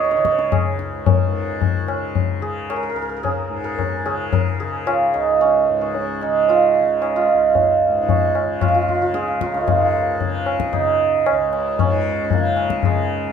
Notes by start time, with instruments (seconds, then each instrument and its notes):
Already playing: tanpura C#2 G#2 C#3, santur D#4 F4 G#4 A#4 D#5
0.04 santur C#5
0.11 santur C#5, tabla te
0.15 tanpura C#3, santur C#5
0.25 santur C#5, tabla ke
0.32 santur C#5
0.39 santur C#5, tabla te
0.52 santur G#4, tabla na, tabla ge
0.72 tanpura C#2
0.79 tabla te
1.06 santur A#4, tabla tin, tabla ge
1.27 tanpura G#2
1.62 tabla tin, tabla ge
1.82 tanpura C#3
1.88 tabla na
2.15 tabla tin, tabla ge
2.40 tanpura C#3, santur G#4
2.70 santur A#4, tabla na
2.76 santur A#4
2.83 santur A#4
2.89 santur A#4
2.94 tanpura C#2, santur A#4
3.02 santur A#4
3.09 santur A#4
3.17 santur A#4
3.23 santur G#4, tabla tin, tabla ge
3.50 tanpura G#2
3.64 santur A#4
3.79 tabla tin, tabla ge
4.05 tanpura C#3, santur G#4, tabla na
4.33 santur A#4, tabla tin, tabla ge
4.60 tanpura C#3, santur G#4
4.87 santur F4, tabla na
5.14 tanpura C#2, santur D#4, tabla na
5.41 santur C#4, tabla tin
5.69 tanpura G#2
5.81 santur C#4
5.95 tabla tin
6.21 tanpura C#3, santur D#4, tabla na
6.48 santur F4, tabla tin
6.80 tanpura C#3
7.02 santur D#4, tabla na
7.16 santur F4
7.34 tanpura C#2
7.55 tabla tin, tabla ge
7.88 tanpura G#2
8.03 santur D#4
8.09 santur C#4, tabla tin, tabla ge
8.35 tabla na
8.44 tanpura C#3
8.61 santur F4, tabla na, tabla ge
8.68 santur F4
8.74 santur F4
8.82 santur F4
8.88 santur F4, tabla ge
8.95 tanpura C#3, santur F4
9.02 santur F4
9.14 santur G#4, tabla te
9.28 tabla te
9.41 santur F4 C#6, tabla ke
9.45 santur G#5 A#5
9.52 tanpura C#2, santur D#5 F5, tabla te
9.57 santur A#4 C#5
9.63 santur F4 G#4
9.68 tanpura G#2, tabla tin, tabla ge
10.21 tanpura C#3, tabla tin, tabla ge
10.46 tabla na
10.60 tabla ke
10.73 tanpura C#3, santur D#4, tabla tin, tabla ge
11.26 tanpura C#2, tabla na
11.53 tabla na
11.79 santur C#4, tabla tin, tabla ge
11.85 tanpura G#2
12.24 santur C#4
12.30 santur A#3, tabla tin, tabla ge
12.38 tanpura C#3
12.57 tabla na
12.70 tabla ke
12.83 santur G#3, tabla tin, tabla ge
12.91 tanpura C#3